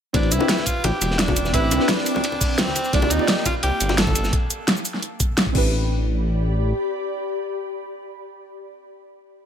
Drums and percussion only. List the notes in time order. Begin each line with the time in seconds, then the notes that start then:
0.14 kick, closed hi-hat, ride, muted conga
0.23 ride
0.32 closed hi-hat, ride, cabasa
0.40 muted conga
0.49 snare, closed hi-hat, ride
0.58 snare, muted conga
0.66 kick, closed hi-hat, ride, cabasa
0.84 closed hi-hat, ride, muted conga
1.01 closed hi-hat, ride, muted conga, cabasa
1.11 snare
1.19 snare, closed hi-hat, ride
1.28 kick, muted conga, high conga
1.36 closed hi-hat, ride, cabasa
1.45 snare, muted conga, cabasa
1.53 kick, closed hi-hat, ride
1.71 closed hi-hat, ride, muted conga, cabasa
1.80 snare
1.88 snare, closed hi-hat, ride, muted conga
1.98 snare
2.06 open hi-hat, ride, cabasa
2.15 snare, muted conga
2.24 closed hi-hat, ride
2.32 muted conga
2.41 kick, closed hi-hat, open hi-hat, cabasa
2.58 snare, closed hi-hat, ride, muted conga
2.67 snare, high conga
2.75 closed hi-hat, ride, muted conga, cabasa
2.85 ride, cabasa
2.93 kick, closed hi-hat, ride
3.02 ride, muted conga
3.10 closed hi-hat, ride, cabasa
3.19 muted conga
3.28 snare, closed hi-hat, ride
3.37 snare
3.45 kick, closed hi-hat, ride, muted conga, cabasa
3.63 closed hi-hat, ride, muted conga
3.80 closed hi-hat, ride, cabasa
3.89 snare, muted conga
3.98 snare, closed hi-hat, ride
4.07 kick, muted conga, high conga
4.15 closed hi-hat, ride, cabasa
4.24 snare, cabasa
4.33 kick, closed hi-hat
4.50 closed hi-hat, cabasa
4.68 snare, closed hi-hat
4.77 cabasa
4.85 open hi-hat, cabasa
4.94 snare
5.03 closed hi-hat
5.20 kick, closed hi-hat, cabasa
5.38 snare, closed hi-hat
5.46 kick
5.55 kick, crash